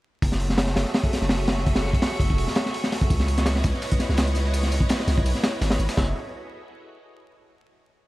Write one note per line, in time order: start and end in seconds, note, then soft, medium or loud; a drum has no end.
0.22 0.75 F#1 loud
0.22 3.07 F#4 medium
0.22 3.07 G#4 medium
0.22 3.07 A4 medium
0.22 3.07 E5 medium
0.22 5.98 C#6 medium
0.22 kick loud
0.22 open hi-hat medium
0.32 snare medium
0.40 open hi-hat medium
0.50 snare soft
0.58 snare loud
0.58 open hi-hat medium
0.67 snare medium
0.76 0.85 F#1 loud
0.76 snare loud
0.76 open hi-hat medium
0.85 snare soft
0.94 snare loud
0.94 open hi-hat medium
1.03 kick medium
1.13 snare medium
1.13 open hi-hat medium
1.22 1.92 F#1 medium
1.22 snare soft
1.29 snare loud
1.29 open hi-hat medium
1.47 snare loud
1.47 open hi-hat medium
1.58 snare soft
1.66 kick medium
1.66 open hi-hat medium
1.76 snare loud
1.76 open hi-hat medium
1.86 snare soft
1.93 kick medium
1.93 open hi-hat medium
2.02 snare loud
2.02 open hi-hat medium
2.12 snare medium
2.20 2.40 F#1 medium
2.20 kick medium
2.20 open hi-hat medium
2.30 kick loud
2.38 2.47 E1 medium
2.38 open hi-hat medium
2.48 snare soft
2.55 snare loud
2.55 open hi-hat medium
2.66 snare medium
2.74 open hi-hat medium
2.84 snare medium
2.92 snare soft
2.92 open hi-hat medium
3.01 kick medium
3.10 3.63 C#2 loud
3.10 5.95 E4 medium
3.10 5.95 B4 medium
3.10 5.95 C#5 medium
3.10 5.95 D#5 medium
3.10 kick loud
3.10 open hi-hat medium
3.10 tambourine medium
3.20 snare medium
3.20 snare soft
3.28 open hi-hat medium
3.28 tambourine medium
3.38 snare medium
3.38 closed hi-hat soft
3.46 snare loud
3.46 open hi-hat medium
3.46 tambourine medium
3.56 snare medium
3.63 3.73 C#2 loud
3.63 kick loud
3.63 snare loud
3.63 open hi-hat medium
3.63 tambourine medium
3.74 snare soft
3.82 snare loud
3.82 open hi-hat medium
3.82 tambourine medium
3.92 kick loud
3.92 closed hi-hat soft
4.00 snare medium
4.00 open hi-hat medium
4.00 tambourine medium
4.09 4.80 C#2 medium
4.09 snare soft
4.17 snare loud
4.17 open hi-hat medium
4.17 tambourine medium
4.27 closed hi-hat soft
4.35 snare soft
4.35 open hi-hat medium
4.35 tambourine medium
4.45 snare soft
4.53 open hi-hat medium
4.53 tambourine medium
4.63 snare soft
4.72 open hi-hat medium
4.72 tambourine medium
4.80 kick loud
4.89 snare loud
4.89 open hi-hat medium
4.89 tambourine medium
5.00 snare soft
5.07 5.27 C#2 loud
5.07 snare soft
5.07 open hi-hat medium
5.07 tambourine medium
5.17 kick loud
5.26 5.34 B1 medium
5.26 open hi-hat medium
5.26 tambourine medium
5.35 snare soft
5.43 snare loud
5.43 open hi-hat medium
5.43 tambourine medium
5.61 5.78 G#1 loud
5.61 snare loud
5.61 snare soft
5.61 open hi-hat medium
5.61 tambourine medium
5.70 snare loud
5.70 open hi-hat medium
5.79 5.88 G#1 loud
5.79 tambourine medium
5.89 snare loud
5.89 snare soft
5.89 open hi-hat medium
5.89 tambourine medium
5.97 6.14 F#1 loud
5.97 kick loud
5.97 snare loud
5.97 splash medium